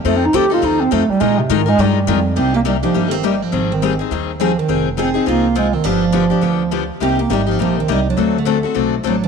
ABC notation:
X:1
M:4/4
L:1/16
Q:"Swing" 1/4=207
K:Bbmix
V:1 name="Steel-string acoustic guitar"
z16 | z16 | [K:Cm] G2 G2 E2 D3- D/2 B,/2 C2 E2 C2- | C2 C4 z6 C2 C2- |
C2 z2 A4 F4 F2 C2 | D12- D2 z2 | G2 G2 E2 D2 C2 C2 E2 D2- | D2 =A,4 z6 D2 D2 |]
V:2 name="Steel-string acoustic guitar"
[F,CE=A]2 z2 [F,CEA]2 [CEA]2 [F,CEA]2 z2 [F,CEA]2 z2 | [E,A,EFB]2 z2 [E,A,EFB]2 [EFB]2 [E,A,EFB]2 z2 [E,A,EFB]2 z2 | [K:Cm] [C,G,B,EG]2 z2 [C,G,B,EG]2 [B,EG]2 [C,G,B,EG]2 z2 [C,G,B,EG]2 z2 | [E,G,CEA]2 z2 [E,G,CEA]2 [CEA]2 [E,G,CEA]2 z2 [E,G,CEA]2 z2 |
[F,CEA]2 z2 [F,CEA]2 [CEA]2 [F,CEA]2 z2 [F,CEA]2 z2 | [D,F,=B,DG]2 z2 [D,F,B,DG]2 [B,DG]2 [D,F,B,DG]2 z2 [D,F,B,DG]2 z2 | [C,G,B,EG]2 z2 [C,G,B,EG]2 [B,EG]2 [C,G,B,EG]2 z2 [C,G,B,EG]2 z2 | [D,=A,C^F=A]2 z2 [D,A,CFA]2 [CFA]2 [D,A,CFA]2 z2 [D,A,CFA]2 z2 |]
V:3 name="Bass clarinet" clef=bass
(3=A,2 C2 E2 G2 F2 E2 C2 A,2 G,2 | A,2 C,2 E,2 A,2 G,6- G, z | [K:Cm] C2 B,2 G,2 F,3- F,/2 D,/2 E,2 G,2 F,2- | F,2 E,4 z6 F,2 E,2- |
E,2 z2 C4 B,4 A,2 E,2 | F,12- F,2 z2 | C2 B,2 G,2 F,2 F,2 E,2 G,2 ^F,2- | ^F,2 D,4 z6 F,2 z2 |]
V:4 name="Upright bass" clef=bass
F,,4 D,,4 E,,4 F,,2 z2 | B,,4 A,,4 G,,4 F,,4 | [K:Cm] C,,8 G,,,8 | A,,,8 E,,8 |
F,,,8 C,,8 | G,,,8 D,,8 | C,,4 A,,,4 B,,,4 C,,4 | D,,8 =B,,,4 =A,,,4 |]